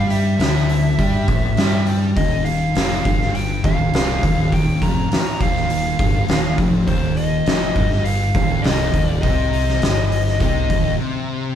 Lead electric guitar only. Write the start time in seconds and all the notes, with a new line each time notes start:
0.11 E5
2.16 D#5
2.45 F5
3.35 G5
3.65 F5
4.54 G5
4.82 A#5
5.41 F5
6.88 C5
7.17 D#5
8.04 F5
8.62 D#5
9.06 D5
9.22 D#5